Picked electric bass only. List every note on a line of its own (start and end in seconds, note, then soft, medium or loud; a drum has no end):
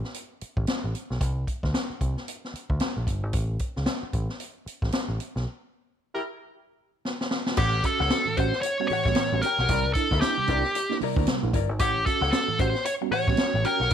0.42 muted picked electric bass stroke soft
0.57 0.66 A1 medium
0.84 0.93 A1 medium
1.10 1.20 B1 medium
1.21 1.44 C2 medium
1.64 1.73 D2 medium
1.90 muted picked electric bass stroke soft
2.01 2.15 C2 medium
2.54 muted picked electric bass stroke soft
2.70 2.79 D2 medium
2.97 3.06 A#1 medium
3.07 3.23 G1 medium
3.23 3.32 G#1 medium
3.34 3.57 A1 medium
3.77 3.86 C#2 medium
4.03 muted picked electric bass stroke soft
4.13 4.27 A1 medium
4.66 muted picked electric bass stroke soft
4.82 4.91 A1 medium
5.08 5.18 A1 medium
5.36 5.45 B1 medium
7.58 7.81 A1 loud
8.00 8.09 C#2 loud
8.25 muted picked electric bass stroke soft
8.38 8.51 A1 medium
8.90 muted picked electric bass stroke soft
9.05 9.15 A1 medium
9.32 9.41 A1 medium
9.58 9.68 B1 medium
9.69 9.92 C2 loud
10.11 10.20 D2 loud
10.39 muted picked electric bass stroke soft
10.49 10.62 C2 loud
11.02 muted picked electric bass stroke medium
11.16 11.26 D2 medium
11.43 11.52 A#1 medium
11.54 11.69 G1 medium
11.69 11.80 G#1 medium
11.80 12.03 A1 loud
12.21 12.31 C#2 loud
12.48 muted picked electric bass stroke medium
12.59 12.73 A1 loud
13.11 muted picked electric bass stroke soft
13.28 13.37 A1 medium
13.54 13.63 A1 medium
13.80 13.89 B1 medium